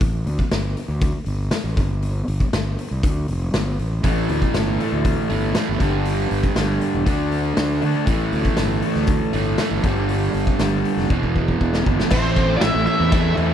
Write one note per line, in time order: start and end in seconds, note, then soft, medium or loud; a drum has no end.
0.01 0.24 A1 medium
0.01 kick loud
0.01 open hi-hat medium
0.26 0.37 D2 loud
0.26 open hi-hat soft
0.39 kick medium
0.51 0.74 G1 medium
0.51 snare loud
0.51 open hi-hat medium
0.77 open hi-hat medium
0.88 1.11 D2 medium
1.01 kick loud
1.01 open hi-hat medium
1.26 1.49 G1 medium
1.26 open hi-hat medium
1.51 snare loud
1.51 open hi-hat medium
1.64 1.75 A1 medium
1.77 2.22 G1 medium
1.77 kick medium
1.77 open hi-hat soft
2.02 open hi-hat medium
2.28 2.39 G1 medium
2.28 open hi-hat medium
2.40 kick medium
2.53 2.75 G1 medium
2.53 snare loud
2.53 open hi-hat medium
2.79 open hi-hat medium
2.91 3.02 C2 medium
3.03 3.26 D2 medium
3.03 kick loud
3.03 open hi-hat medium
3.28 3.51 F1 medium
3.28 open hi-hat medium
3.54 3.77 G1 medium
3.54 snare loud
3.54 open hi-hat medium
3.79 4.01 A1 medium
3.79 open hi-hat soft
4.03 4.26 A1 medium
4.03 4.78 A2 medium
4.03 4.79 E3 medium
4.03 4.79 A3 medium
4.03 kick medium
4.03 open hi-hat medium
4.29 4.40 D2 loud
4.29 open hi-hat soft
4.42 kick medium
4.54 4.77 G1 medium
4.54 snare loud
4.54 open hi-hat medium
4.80 5.80 A2 medium
4.80 5.80 E3 medium
4.80 5.79 A3 medium
4.80 open hi-hat medium
4.92 5.15 D2 medium
5.05 kick loud
5.05 open hi-hat medium
5.30 5.53 G1 medium
5.30 5.54 A2 medium
5.30 5.54 E3 medium
5.30 5.53 A3 medium
5.30 open hi-hat soft
5.55 5.79 A2 medium
5.55 5.80 E3 medium
5.55 5.80 A3 medium
5.55 snare loud
5.55 open hi-hat medium
5.69 5.79 G1 medium
5.79 6.25 G1 medium
5.79 6.54 G2 medium
5.79 6.55 D3 medium
5.79 6.55 G3 medium
5.79 kick medium
5.79 open hi-hat soft
6.05 open hi-hat medium
6.31 6.42 G1 medium
6.31 open hi-hat soft
6.43 kick medium
6.55 6.78 G1 medium
6.55 7.04 G2 medium
6.55 7.04 D3 medium
6.55 7.06 G3 medium
6.55 snare loud
6.55 open hi-hat medium
6.81 open hi-hat medium
6.94 7.05 E1 medium
7.05 7.51 D2 loud
7.05 7.80 D3 medium
7.05 7.81 A3 medium
7.05 7.80 D4 medium
7.05 kick loud
7.05 open hi-hat medium
7.32 open hi-hat medium
7.57 7.79 D2 medium
7.57 snare loud
7.57 open hi-hat medium
7.81 7.94 D3 medium
7.81 8.06 D3 medium
7.81 8.06 A3 medium
7.81 8.05 D4 medium
7.81 open hi-hat soft
8.06 8.30 A1 medium
8.06 8.81 A2 medium
8.06 8.82 E3 medium
8.06 8.81 A3 medium
8.06 kick medium
8.06 open hi-hat medium
8.32 8.44 D2 loud
8.32 open hi-hat soft
8.45 kick medium
8.57 8.80 G1 medium
8.57 snare medium
8.57 open hi-hat medium
8.82 9.84 A2 medium
8.82 9.83 E3 medium
8.82 9.82 A3 medium
8.82 open hi-hat medium
8.95 9.18 D2 medium
8.95 snare soft
9.07 kick loud
9.07 open hi-hat medium
9.33 9.56 G1 medium
9.33 9.56 A2 medium
9.33 9.58 E3 medium
9.33 9.57 A3 medium
9.33 open hi-hat medium
9.58 9.82 A2 medium
9.58 9.83 E3 medium
9.58 9.83 A3 medium
9.58 snare loud
9.58 open hi-hat medium
9.71 9.82 G1 medium
9.83 10.29 G1 loud
9.83 10.58 G2 medium
9.83 10.59 D3 medium
9.83 10.59 G3 medium
9.83 kick medium
9.83 open hi-hat soft
10.09 open hi-hat medium
10.34 10.46 G1 medium
10.34 open hi-hat soft
10.47 kick medium
10.59 10.82 G1 loud
10.59 11.09 G2 medium
10.59 11.09 D3 medium
10.59 11.10 G3 medium
10.59 snare medium
10.59 open hi-hat medium
10.85 open hi-hat medium
10.97 11.09 F1 medium
10.97 snare soft
11.09 11.55 E1 medium
11.09 11.84 E2 medium
11.09 11.85 B2 medium
11.09 11.84 E3 medium
11.09 kick loud
11.23 kick medium
11.36 kick medium
11.48 kick medium
11.61 11.83 E1 medium
11.61 kick medium
11.74 snare medium
11.85 11.98 G1 medium
11.85 12.10 E2 medium
11.85 12.10 B2 medium
11.85 12.09 E3 medium
11.85 kick medium
12.00 snare medium
12.11 12.56 A1 medium
12.11 12.61 A2 medium
12.11 12.62 E3 medium
12.11 12.39 A3 medium
12.11 12.38 C4 medium
12.11 13.54 E4 medium
12.11 12.36 E4 loud
12.11 13.54 A4 medium
12.11 13.54 C5 medium
12.11 12.57 C5 medium
12.11 kick loud
12.11 crash loud
12.11 cowbell medium
12.11 crash medium
12.36 12.63 A3 medium
12.36 12.63 C4 medium
12.36 12.64 E4 medium
12.36 kick medium
12.36 crash medium
12.56 12.62 F4 medium
12.56 12.61 D5 medium
12.61 12.73 A1 medium
12.61 13.12 A2 loud
12.61 13.10 E3 loud
12.61 12.88 A3 loud
12.61 12.87 C4 loud
12.61 12.86 E4 loud
12.61 12.85 E5 loud
12.61 snare loud
12.61 cowbell medium
12.61 crash medium
12.75 12.86 A1 medium
12.86 13.11 A3 medium
12.86 13.12 C4 medium
12.86 13.13 E4 medium
12.86 13.33 E5 medium
12.86 crash medium
13.00 13.34 E2 medium
13.11 13.54 A2 medium
13.11 13.39 E3 medium
13.11 13.37 A3 medium
13.11 13.37 C4 medium
13.11 13.37 E4 medium
13.11 kick loud
13.11 cowbell medium
13.11 crash medium
13.37 13.54 E2 loud
13.37 13.54 A2 medium
13.37 13.54 E3 medium
13.37 13.54 A3 medium
13.37 13.54 C4 medium
13.37 13.54 E4 medium
13.37 cowbell medium
13.37 crash medium